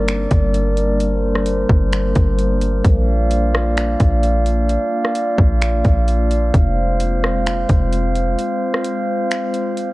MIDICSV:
0, 0, Header, 1, 4, 480
1, 0, Start_track
1, 0, Tempo, 461538
1, 1041, Time_signature, 4, 2, 24, 8
1, 10331, End_track
2, 0, Start_track
2, 0, Title_t, "Glass harmonica"
2, 0, Program_c, 0, 92
2, 0, Note_on_c, 0, 55, 68
2, 0, Note_on_c, 0, 58, 66
2, 0, Note_on_c, 0, 62, 64
2, 0, Note_on_c, 0, 70, 64
2, 0, Note_on_c, 0, 74, 77
2, 1022, Note_off_c, 0, 74, 0
2, 1040, Note_on_c, 0, 72, 83
2, 2919, Note_off_c, 0, 55, 0
2, 2919, Note_off_c, 0, 70, 0
2, 2941, Note_off_c, 0, 72, 0
2, 2961, Note_on_c, 0, 74, 66
2, 2961, Note_on_c, 0, 77, 78
2, 2962, Note_on_c, 0, 65, 66
2, 6759, Note_off_c, 0, 58, 0
2, 6759, Note_off_c, 0, 62, 0
2, 6762, Note_off_c, 0, 74, 0
2, 6763, Note_off_c, 0, 65, 0
2, 6801, Note_on_c, 0, 60, 65
2, 6801, Note_on_c, 0, 72, 64
2, 6802, Note_on_c, 0, 56, 70
2, 6802, Note_on_c, 0, 65, 65
2, 10331, Note_off_c, 0, 56, 0
2, 10331, Note_off_c, 0, 60, 0
2, 10331, Note_off_c, 0, 65, 0
2, 10331, Note_off_c, 0, 72, 0
2, 10331, Note_off_c, 0, 77, 0
2, 10331, End_track
3, 0, Start_track
3, 0, Title_t, "808-style bass"
3, 0, Program_c, 1, 38
3, 0, Note_on_c, 1, 31, 112
3, 279, Note_off_c, 1, 31, 0
3, 323, Note_on_c, 1, 31, 107
3, 1720, Note_off_c, 1, 31, 0
3, 1761, Note_on_c, 1, 31, 101
3, 2222, Note_off_c, 1, 31, 0
3, 2243, Note_on_c, 1, 31, 107
3, 2933, Note_off_c, 1, 31, 0
3, 2961, Note_on_c, 1, 34, 108
3, 4119, Note_off_c, 1, 34, 0
3, 4163, Note_on_c, 1, 34, 106
3, 4968, Note_off_c, 1, 34, 0
3, 5600, Note_on_c, 1, 34, 100
3, 6061, Note_off_c, 1, 34, 0
3, 6082, Note_on_c, 1, 34, 109
3, 6772, Note_off_c, 1, 34, 0
3, 6800, Note_on_c, 1, 29, 107
3, 7959, Note_off_c, 1, 29, 0
3, 8002, Note_on_c, 1, 29, 106
3, 8692, Note_off_c, 1, 29, 0
3, 10331, End_track
4, 0, Start_track
4, 0, Title_t, "Drums"
4, 82, Note_on_c, 9, 42, 74
4, 88, Note_on_c, 9, 26, 114
4, 186, Note_off_c, 9, 42, 0
4, 192, Note_off_c, 9, 26, 0
4, 319, Note_on_c, 9, 42, 67
4, 323, Note_on_c, 9, 36, 87
4, 423, Note_off_c, 9, 42, 0
4, 427, Note_off_c, 9, 36, 0
4, 561, Note_on_c, 9, 42, 82
4, 665, Note_off_c, 9, 42, 0
4, 799, Note_on_c, 9, 42, 79
4, 903, Note_off_c, 9, 42, 0
4, 1042, Note_on_c, 9, 42, 81
4, 1146, Note_off_c, 9, 42, 0
4, 1410, Note_on_c, 9, 37, 82
4, 1514, Note_off_c, 9, 37, 0
4, 1518, Note_on_c, 9, 42, 89
4, 1622, Note_off_c, 9, 42, 0
4, 1761, Note_on_c, 9, 36, 97
4, 1865, Note_off_c, 9, 36, 0
4, 2002, Note_on_c, 9, 42, 75
4, 2008, Note_on_c, 9, 26, 114
4, 2106, Note_off_c, 9, 42, 0
4, 2112, Note_off_c, 9, 26, 0
4, 2239, Note_on_c, 9, 42, 70
4, 2243, Note_on_c, 9, 36, 88
4, 2343, Note_off_c, 9, 42, 0
4, 2347, Note_off_c, 9, 36, 0
4, 2481, Note_on_c, 9, 42, 79
4, 2585, Note_off_c, 9, 42, 0
4, 2719, Note_on_c, 9, 42, 78
4, 2823, Note_off_c, 9, 42, 0
4, 2961, Note_on_c, 9, 36, 108
4, 2961, Note_on_c, 9, 42, 88
4, 3065, Note_off_c, 9, 36, 0
4, 3065, Note_off_c, 9, 42, 0
4, 3439, Note_on_c, 9, 42, 88
4, 3543, Note_off_c, 9, 42, 0
4, 3688, Note_on_c, 9, 37, 107
4, 3792, Note_off_c, 9, 37, 0
4, 3922, Note_on_c, 9, 42, 78
4, 3928, Note_on_c, 9, 26, 118
4, 4026, Note_off_c, 9, 42, 0
4, 4032, Note_off_c, 9, 26, 0
4, 4160, Note_on_c, 9, 42, 70
4, 4163, Note_on_c, 9, 36, 89
4, 4264, Note_off_c, 9, 42, 0
4, 4267, Note_off_c, 9, 36, 0
4, 4402, Note_on_c, 9, 42, 77
4, 4506, Note_off_c, 9, 42, 0
4, 4639, Note_on_c, 9, 42, 81
4, 4743, Note_off_c, 9, 42, 0
4, 4881, Note_on_c, 9, 42, 81
4, 4985, Note_off_c, 9, 42, 0
4, 5249, Note_on_c, 9, 37, 85
4, 5353, Note_off_c, 9, 37, 0
4, 5358, Note_on_c, 9, 42, 90
4, 5462, Note_off_c, 9, 42, 0
4, 5600, Note_on_c, 9, 36, 97
4, 5704, Note_off_c, 9, 36, 0
4, 5841, Note_on_c, 9, 42, 77
4, 5847, Note_on_c, 9, 26, 118
4, 5945, Note_off_c, 9, 42, 0
4, 5951, Note_off_c, 9, 26, 0
4, 6079, Note_on_c, 9, 42, 68
4, 6082, Note_on_c, 9, 36, 91
4, 6183, Note_off_c, 9, 42, 0
4, 6186, Note_off_c, 9, 36, 0
4, 6321, Note_on_c, 9, 42, 78
4, 6425, Note_off_c, 9, 42, 0
4, 6559, Note_on_c, 9, 42, 80
4, 6663, Note_off_c, 9, 42, 0
4, 6800, Note_on_c, 9, 36, 111
4, 6801, Note_on_c, 9, 42, 83
4, 6904, Note_off_c, 9, 36, 0
4, 6905, Note_off_c, 9, 42, 0
4, 7279, Note_on_c, 9, 42, 92
4, 7383, Note_off_c, 9, 42, 0
4, 7527, Note_on_c, 9, 37, 102
4, 7631, Note_off_c, 9, 37, 0
4, 7763, Note_on_c, 9, 42, 79
4, 7768, Note_on_c, 9, 26, 118
4, 7867, Note_off_c, 9, 42, 0
4, 7872, Note_off_c, 9, 26, 0
4, 7998, Note_on_c, 9, 42, 68
4, 8002, Note_on_c, 9, 36, 86
4, 8102, Note_off_c, 9, 42, 0
4, 8106, Note_off_c, 9, 36, 0
4, 8242, Note_on_c, 9, 42, 82
4, 8346, Note_off_c, 9, 42, 0
4, 8480, Note_on_c, 9, 42, 78
4, 8584, Note_off_c, 9, 42, 0
4, 8722, Note_on_c, 9, 42, 84
4, 8826, Note_off_c, 9, 42, 0
4, 9090, Note_on_c, 9, 37, 87
4, 9194, Note_off_c, 9, 37, 0
4, 9198, Note_on_c, 9, 42, 93
4, 9302, Note_off_c, 9, 42, 0
4, 9683, Note_on_c, 9, 42, 76
4, 9688, Note_on_c, 9, 26, 122
4, 9787, Note_off_c, 9, 42, 0
4, 9792, Note_off_c, 9, 26, 0
4, 9920, Note_on_c, 9, 42, 70
4, 10024, Note_off_c, 9, 42, 0
4, 10162, Note_on_c, 9, 42, 77
4, 10266, Note_off_c, 9, 42, 0
4, 10331, End_track
0, 0, End_of_file